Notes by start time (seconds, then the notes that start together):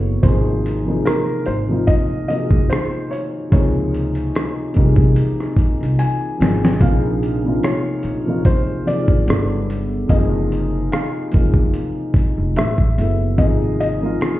Already playing: F#1 C#3 F#3 B3 E4 A4 C#5
0.21 G#1 C3 F3 A#3 C5, kick, closed hi-hat
0.26 D#4 G#4
0.66 closed hi-hat
0.84 C3 F3 A#3
0.88 D#4 G#4
1.05 A#4, cross-stick, closed hi-hat
1.46 G#1 C5, closed hi-hat
1.68 C3 F3 A#3
1.72 D#4 F4
1.87 D#5, kick, closed hi-hat
2.27 C3 F3 A#3 D#5, closed hi-hat
2.31 D#4 F#4
2.39 G#4
2.51 F#1, kick
2.70 C5, cross-stick, closed hi-hat
3.11 C#5, closed hi-hat
3.50 C#2 C3 F3 A#3 C#5, kick, closed hi-hat
3.54 D#4 G#4
3.94 closed hi-hat
4.15 closed hi-hat
4.35 cross-stick, closed hi-hat
4.73 C2 C3 F3 A#3, kick, closed hi-hat
4.77 D#4 G4
4.85 G#4
4.96 kick
5.16 closed hi-hat
5.40 cross-stick
5.57 kick, closed hi-hat
5.81 C2, closed hi-hat
5.99 G#5, closed hi-hat
6.38 G#1 C3 F3 A#3, closed hi-hat
6.42 D#4 G#4, snare
6.65 snare
6.80 A#1 C3 F3 A#3 F5, kick, closed hi-hat
6.84 D#4 G#4
7.23 closed hi-hat
7.43 C3 F3 A#3
7.47 D#4 F4
7.63 C#5, cross-stick, closed hi-hat
8.03 A#1, closed hi-hat
8.24 C3 F3 A#3
8.28 D#4 F4
8.45 C5, kick, closed hi-hat
8.84 C3 F3 A#3 D5, closed hi-hat
8.88 D#4 G#4
9.08 G#1, kick
9.25 G1 C#3 F#3 B3, closed hi-hat
9.29 E4 A4, cross-stick
9.70 closed hi-hat
10.08 F#1 C3 F3 A#3 D#5, kick, closed hi-hat
10.12 D#4 G#4
10.52 closed hi-hat
10.92 F5, cross-stick, closed hi-hat
11.31 F#1 C3 F3 A#3, kick, closed hi-hat
11.35 D#4 G#4
11.54 kick
11.74 closed hi-hat
12.14 kick, closed hi-hat
12.38 F1
12.56 A1 E5, cross-stick, closed hi-hat
12.78 kick
12.95 F#1 C#3 F#3 B3, closed hi-hat
13.00 E4 A4
13.36 G#1 C3 F3 A#3 D#5, kick, closed hi-hat
13.41 D#4 G#4
13.80 D#5, closed hi-hat
14.00 C3 F3 A#3
14.04 D#4 F4
14.21 cross-stick, closed hi-hat